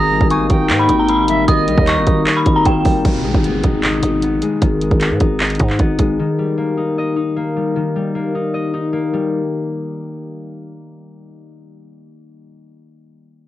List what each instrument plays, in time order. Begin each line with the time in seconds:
Already playing: 808-style bass G#1, harp D#3 B3 D#4 D#5, ambient pad A#3 D#4 G4 D#5, flute A#5, synth bell D#6
0.11 harp G3
0.21 808-style bass G#1, kick
0.30 harp A#3, flute G#5, synth bell C#6, closed hi-hat
0.50 808-style bass G#1, harp D#4, flute G5, kick, closed hi-hat
0.70 808-style bass G#2, harp D#5, clap, closed hi-hat
0.79 synth bell B5
0.89 808-style bass G#1, harp D#4, closed hi-hat
0.99 synth bell A#5
1.09 harp A#3, synth bell B5, closed hi-hat
1.28 harp G3, flute E5, closed hi-hat
1.48 808-style bass G#1, harp D#3, flute D#5, synth bell D#6, kick, closed hi-hat
1.68 808-style bass B1, harp G3, closed hi-hat
1.78 808-style bass D#2, kick
1.87 harp A#3, synth bell C#6, clap, closed hi-hat
1.97 808-style bass G1
2.07 808-style bass G#1, harp D#4, kick, closed hi-hat
2.26 harp D#5, clap, closed hi-hat
2.37 synth bell B5
2.46 808-style bass G#1, harp D#4, kick, closed hi-hat
2.56 synth bell A#5
2.65 808-style bass G#1, harp A#3, synth bell G5, kick, closed hi-hat
2.85 808-style bass G#1, harp G3, kick, open hi-hat
3.05 808-style bass G#1, harp D#3, kick, closed hi-hat, crash, downlifter
3.24 808-style bass B1, harp G#3
3.34 808-style bass G#1, kick
3.44 harp B3, closed hi-hat
3.63 808-style bass G#1, harp D#4, kick, closed hi-hat
3.83 harp D#5, clap, closed hi-hat
4.03 808-style bass G#1, harp D#4, closed hi-hat
4.22 harp B3, closed hi-hat
4.42 harp G#3, closed hi-hat
4.62 808-style bass G#1, harp D#3, kick, closed hi-hat
4.81 harp G#3, closed hi-hat
4.91 808-style bass G#1, kick
5.01 harp B3, clap, closed hi-hat
5.11 808-style bass G#2
5.20 808-style bass G#1, harp D#4, kick, closed hi-hat
5.40 harp D#5, clap, closed hi-hat
5.45 closed hi-hat
5.50 closed hi-hat
5.55 closed hi-hat
5.59 808-style bass G#2, harp D#4, kick, closed hi-hat
5.70 clap
5.79 808-style bass G#1, harp B3, kick, closed hi-hat
5.99 808-style bass G#1, harp G#3, kick, closed hi-hat
6.19 harp D#3
6.39 harp G3
6.58 harp A#3
6.77 harp D#4
6.98 harp D#5
7.16 harp D#4
7.36 harp A#3
7.56 harp G3
7.76 harp D#3
7.96 harp G3
8.15 harp A#3
8.35 harp D#4
8.54 harp D#5
8.74 harp D#4
8.93 harp A#3
9.13 harp G3